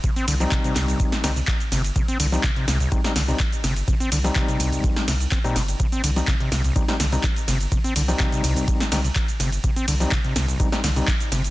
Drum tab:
RD |--x---x---x---x-|--x---x---x---x-|--x---x---x---x-|--x---x---x---x-|
HH |xxoxxxoxxxoxxxox|xxoxxxoxxxoxxxox|xxoxxxoxxxoxxxox|xxoxxxoxxxoxxxox|
SH |xxxxxxxxxxxxxxxx|xxxxx-xxxxxxxxxx|xxxxxxxxxxxxxxxx|xxxxx-xxxxxxxxxx|
CP |----x-x-----x---|----x-------x---|----x-------x---|----x-------x---|
SD |------o--oo---o-|------o--oo---o-|---------oo---o-|------o--oo---o-|
BD |o---o---o---o---|o---o---o---o---|o---o---o---o---|o---o---o---o---|

RD |--x---x---x---x-|--x---x---x---x-|
HH |xxoxxxoxxxoxxxox|xxoxxxoxxxoxxxox|
SH |xxxxxxxxxxxxxxxx|xxxxx-xxxxxxxxxx|
CP |----x-------x---|----x-------x---|
SD |---------oo---o-|------o--oo---o-|
BD |o---o---o---o---|o---o---o---o---|